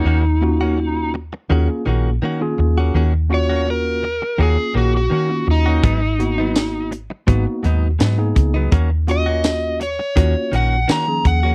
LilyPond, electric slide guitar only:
\new Staff \with { instrumentName = "Electric slide guitar" } { \time 4/4 \key ees \minor \tempo 4 = 83 ees'4. r2 r8 | r8 des''8 bes'4 aes'8 ges'16 ges'8. ees'8~ | ees'4. r2 r8 | r8 ees''4 des''4 ges''8 bes''8 ges''8 | }